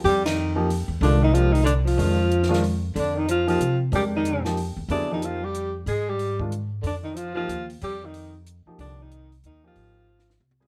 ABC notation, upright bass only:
X:1
M:3/4
L:1/8
Q:"Swing" 1/4=185
K:Fdor
V:1 name="Upright bass" clef=bass
F,,4- F,, =E,, | C,,6 | F,,6 | F,,4 C,2 |
F,,4- F,, =E,, | F,,6 | A,,6 | F,,4 E,,2 |
F,,4- F,, z | C,,4 E,,2 | A,,,4 C,,2 |]